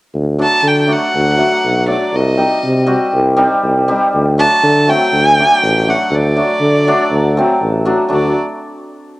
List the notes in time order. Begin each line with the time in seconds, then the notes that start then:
0.14 D2
0.38 F#3 A3 D4
0.43 A5
0.63 D3
0.68 G5
0.87 F#3 A3 D4
0.93 F#5
1.14 D2
1.37 F#3 A3 D4
1.65 B1
1.86 F#3 A3 D4 D5
2.14 C2 D#5
2.37 G3 C4 D#4
2.64 C3
2.86 G3 C4 F#4
3.14 C2
3.36 G3 C4 D#4
3.63 C2
3.88 G3 C4 D#4
4.14 D2
4.38 F#3 A3 D4 A5
4.63 D3
4.87 F#3 A3 C4 G5
5.12 D2
5.39 F#3 A3 D4
5.62 A1
5.88 F#3 A3 D4 F#5
6.10 D2
6.14 D5
6.36 F#3 A3 D4
6.61 D3
6.87 F#3 A3 D4
7.10 D2
7.37 F#3 A3 C4
7.61 A1
7.85 F#3 A3 D4
8.08 D2 F#3 A3 D4
8.14 D5